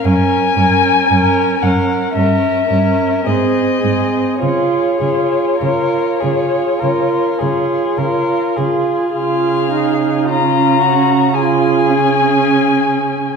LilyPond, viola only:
\new Staff \with { instrumentName = "Viola" } { \time 4/4 \key des \major \tempo 4 = 54 des'8 des'8 des'8 des'8 des'8 des'8 c'8 c'8 | f'8 f'8 f'8 f'8 f'8 f'8 f'8 f'8 | f'8 ees'8 des'4 f'8 des'4. | }